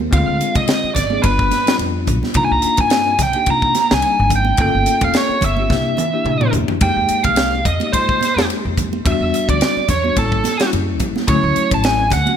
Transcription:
0.00 high conga
0.11 D2 D3 G#3 C4 F4 F5, kick, ride
0.27 D2
0.41 hi-hat pedal, ride
0.55 C2 D#5, kick, ride, low conga
0.68 snare, ride
0.84 muted upright bass stroke
0.95 G#1 D5, kick, snare, hi-hat pedal, ride, low conga
1.10 G#3 C4 D4 G#4, high conga
1.22 G1 G3 B3 D4 F4 B4, kick, ride
1.39 kick
1.51 D4, snare, hi-hat pedal, ride, high conga
1.66 G3 B3 D4 F4, snare, ride
1.79 F2, ride
2.07 B1, kick, hi-hat pedal, ride, low conga
2.23 snare, high conga
2.34 C2 A#3 D4 D#4 F4 A#5, kick, ride
2.44 G#5
2.51 C2 A#5
2.62 muted upright bass stroke, hi-hat pedal, ride
2.77 G2 G#5, kick, ride, low conga
2.90 snare, ride
3.19 C2 G4, kick, snare, hi-hat pedal, ride, low conga
3.23 G5
3.33 A#3 D4 D#4 G4, ride
3.46 C3 A#3 D4 D#4 F4, kick, ride
3.50 A#5
3.62 kick
3.75 D#4, snare, hi-hat pedal, ride, high conga
3.91 C2 G3 A#3 D4 D#4 G#5, snare
4.02 ride
4.20 G#1
4.30 kick, hi-hat pedal, ride, low conga
4.36 G5
4.45 high conga
4.57 G1 A#3 C#4 F4 A4, kick, ride
4.62 G5
4.75 G1
4.86 hi-hat pedal, ride
5.01 F1 F5, kick, ride, low conga
5.14 C#5, snare, ride
5.29 muted upright bass stroke
5.41 G1 F4, kick, hi-hat pedal, ride, low conga
5.45 A#4 E5
5.57 A#3 C#4 F4 G4, high conga
5.70 C2 A#3 D4 E4 G4, kick, snare
5.97 E4 A#4, hi-hat pedal, high tom, high conga
6.13 A#3 D4 E4 G4
6.25 A#2, mid tom
6.41 mid tom, high conga
6.52 E2, floor tom, hi-hat pedal, low conga
6.68 floor tom, low conga
6.81 F2 G#3 A#3 D#4 G4 G5, kick, ride
6.96 F2
7.08 muted upright bass stroke, hi-hat pedal, ride
7.24 C2 F5, kick, ride, low conga
7.36 snare, ride
7.65 F2 D#4 G4 D#5, kick, hi-hat pedal, ride
7.80 G#3 A#3 D#4 G4, ride, high conga
7.93 F3 G#3 A#3 D#4 F4 C5, kick, ride
8.09 kick
8.21 D#4 G#4, snare, hi-hat pedal, ride, high conga
8.36 F2 G#3 A#3 D#4 G4, snare
8.50 ride
8.65 F2
8.77 kick, hi-hat pedal, ride, low conga
8.93 high conga
9.05 E2 G3 B3 D4 F#4 E5, kick, ride
9.21 E2
9.34 hi-hat pedal, ride
9.49 D2 D5, kick, ride, low conga
9.61 snare, ride
9.77 muted upright bass stroke
9.88 E2 C#5, kick, snare, hi-hat pedal, ride, low conga
10.04 G3 B3 D4 F#4, high conga
10.16 A1 G3 A#3 C#4 E4 A4, kick, ride
10.32 kick
10.44 snare, hi-hat pedal, ride, high conga
10.60 G3 A#3 C#4 E4, snare, ride
10.73 F#2, ride
11.00 A1, kick, hi-hat pedal, ride, low conga
11.16 snare, high conga
11.28 D2 F#3 A3 C#4 E4 C#5, kick, ride
11.43 D2
11.56 muted upright bass stroke, hi-hat pedal, ride
11.71 A1 A5, kick, ride, low conga
11.84 G#5, snare, ride
12.10 D2 E4 F#5, kick, snare, hi-hat pedal, ride, low conga
12.26 F#3 A3 C#4 F#4, ride, high conga

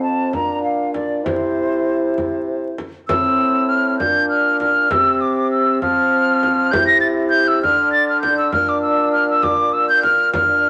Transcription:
Already playing: F2 C4
0.03 A5
0.33 A#2 D4 A#5, frame drum
0.63 F5
0.94 D5, frame drum
1.25 C3 E4 C5, frame drum
2.18 frame drum
2.78 frame drum
3.08 A2 C4 E6, frame drum
3.69 F6
3.99 A#2 D4 G6, frame drum
4.29 F6
4.60 F6, frame drum
4.91 C3 C4 E6, frame drum
5.21 D6
5.51 E6
5.82 F3 C4 F6, frame drum
6.43 frame drum
6.71 C3 E4 G6, frame drum
6.87 A#6
7.00 A6
7.30 G6
7.48 E6
7.62 D3 D4 F6, frame drum
7.92 A6
8.09 F6
8.21 G6, frame drum
8.38 E6
8.52 A#2 D4 F6, frame drum
8.69 D6
8.82 E6
9.13 F6
9.30 E6
9.43 D6, frame drum
9.73 E6
9.89 G6
10.03 F6, frame drum
10.33 D4 F6, frame drum

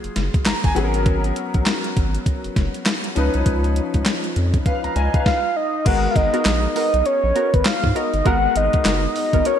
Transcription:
Already playing: F#3 A#3 F4 G#4
0.04 F#1, closed hi-hat
0.16 F#1, snare, closed hi-hat
0.34 kick, closed hi-hat
0.46 G#1 A#5, snare, clap, closed hi-hat
0.64 G#1 G#5, kick, closed hi-hat
0.75 G#1 F#3 B3 C#4 G#4 F#5, closed hi-hat
0.84 A#4
0.94 closed hi-hat
1.06 kick, closed hi-hat
1.24 closed hi-hat
1.36 closed hi-hat
1.54 A#1, kick, closed hi-hat
1.66 snare, clap, closed hi-hat
1.84 closed hi-hat
1.97 G#1, kick, closed hi-hat
2.15 closed hi-hat
2.26 kick, closed hi-hat
2.44 F#1, closed hi-hat
2.56 F#1, kick, snare, closed hi-hat
2.74 closed hi-hat
2.86 snare, clap, closed hi-hat
3.04 closed hi-hat
3.15 C#2 F3 C#4 D#4 B4, closed hi-hat
3.34 C2, closed hi-hat
3.46 C#2, kick, closed hi-hat
3.64 closed hi-hat
3.76 closed hi-hat
3.94 C#2, kick, closed hi-hat
4.06 snare, clap, closed hi-hat
4.24 closed hi-hat
4.36 F2, closed hi-hat
4.54 kick, closed hi-hat
4.66 B4 F5, kick, closed hi-hat
4.84 C#2 F5 A#5, closed hi-hat
4.96 C#2 D#5 G#5, closed hi-hat
5.14 B4 F5, kick, closed hi-hat
5.26 F5, kick, snare
5.56 D#5
5.85 G#1 G#3 B3 F#4 A#4 F#5, kick, closed hi-hat, crash
6.11 F5
6.16 G#1 D#5, kick, closed hi-hat
6.33 B3 F#4 A#4, closed hi-hat
6.45 A#1, snare, clap, closed hi-hat
6.76 B3 F#4 A#4 D#5, open hi-hat
6.94 B1, closed hi-hat
7.06 C#5, closed hi-hat
7.24 A#1
7.35 B3 F#4 A#4, closed hi-hat
7.54 G#1 B4, kick, closed hi-hat
7.65 F5, snare, clap, closed hi-hat
7.84 G#2, kick
7.95 B3 F#4 A#4 D#5, closed hi-hat
8.14 G1, closed hi-hat
8.24 G#1 G#3 B3 F#4 A#4 F#5, kick, closed hi-hat
8.56 G#1 D#5, closed hi-hat
8.73 kick, closed hi-hat
8.85 F#1 B3 F#4 A#4, snare, clap, closed hi-hat
9.16 D#5, open hi-hat
9.33 G#1 B3 F#4 A#4, kick, closed hi-hat
9.45 B3 F#4 A#4 C#5, closed hi-hat

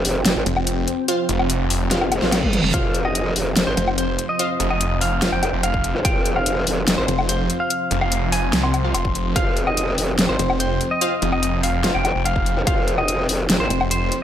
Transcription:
Already playing: F3 C4 F4 C5 G5
0.05 F1, open hi-hat
0.25 F1, snare, closed hi-hat
0.36 G#1
0.46 F1, closed hi-hat
0.57 low woodblock
0.67 closed hi-hat
0.88 closed hi-hat
1.08 F4 C5 F5, closed hi-hat
1.29 F1, closed hi-hat
1.39 low woodblock
1.50 closed hi-hat
1.70 open hi-hat
1.91 F1 F4 C5 F5, snare, closed hi-hat, reverse cymbal
2.01 high tom, low woodblock
2.12 closed hi-hat, low woodblock
2.22 G#1 F4 C5 F5, snare
2.32 snare, closed hi-hat, low woodblock
2.43 kick, mid tom
2.53 closed hi-hat, mid tom
2.64 F1, mid tom
2.74 F1 F4 C5 F5, kick, closed hi-hat
2.94 closed hi-hat
3.05 D#5, low woodblock
3.15 closed hi-hat
3.36 F1, open hi-hat
3.57 F1, snare, closed hi-hat
3.67 G#1 C5
3.77 F1, closed hi-hat
3.88 low woodblock
3.98 C5, closed hi-hat
4.19 closed hi-hat
4.29 D#5
4.39 F4 C5 F5, closed hi-hat
4.60 F1, closed hi-hat
4.70 D#5, low woodblock
4.81 closed hi-hat
5.01 F5, open hi-hat
5.22 F1 F4 C5 F5, snare, closed hi-hat
5.32 F1 G5, low woodblock
5.43 F1, closed hi-hat, low woodblock
5.53 F1
5.63 F5, closed hi-hat, low woodblock
5.74 kick
5.84 closed hi-hat
5.95 F1
6.05 F1 F4 C5 F5 G5, kick, closed hi-hat
6.25 closed hi-hat
6.36 F5, low woodblock
6.46 closed hi-hat
6.67 F1, open hi-hat
6.88 F1, snare, closed hi-hat
6.98 G#1 C5
7.08 F1, closed hi-hat
7.19 low woodblock
7.29 C5, closed hi-hat
7.50 closed hi-hat
7.60 F5
7.70 closed hi-hat
7.91 F1, closed hi-hat
8.01 F5, low woodblock
8.12 closed hi-hat
8.32 G#5, open hi-hat
8.53 C2, snare, closed hi-hat
8.63 C6, low woodblock
8.74 closed hi-hat, low woodblock
8.84 F4 C5 F5
8.94 F1 C6, closed hi-hat, low woodblock
9.05 kick
9.15 F1, closed hi-hat
9.36 F1 F4 C5 F5 G5, kick, closed hi-hat
9.57 closed hi-hat
9.67 D#5, low woodblock
9.77 closed hi-hat
9.98 F1, open hi-hat
10.19 F1, snare, closed hi-hat
10.29 G#1 C5
10.39 F1, closed hi-hat
10.50 low woodblock
10.60 C5, closed hi-hat
10.81 closed hi-hat
10.91 D#5
11.01 F4 C5 F5, closed hi-hat
11.22 F1, closed hi-hat
11.32 D#5, low woodblock
11.43 closed hi-hat
11.63 F5, open hi-hat
11.84 F1 F4 C5 F5, snare, closed hi-hat
11.95 F1 G5, low woodblock
12.05 F1, closed hi-hat, low woodblock
12.15 F1
12.25 F5, closed hi-hat, low woodblock
12.36 kick
12.46 closed hi-hat
12.57 F1
12.67 F1 F4 C5 F5, kick, closed hi-hat
12.88 closed hi-hat
12.98 D#5, low woodblock
13.08 closed hi-hat
13.29 F1, open hi-hat
13.50 F1, snare, closed hi-hat
13.60 G#1 C5
13.70 F1, closed hi-hat
13.81 low woodblock
13.91 C5, closed hi-hat
14.12 closed hi-hat

